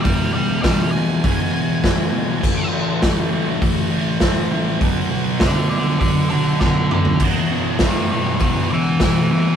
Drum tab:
CC |----------------|x---------------|----------------|x---------------|
HH |o---o---o---o---|----o---o---o---|o---o---o-------|o---o---o---o---|
SD |----o-------o---|----o-------o---|----o-------o---|----o-------o---|
T2 |----------------|----------------|--------------o-|----------------|
FT |----------------|----------------|---------------o|----------------|
BD |o---o---o---o---|o---o---o---o---|o---o---o---o---|o---o---o---o---|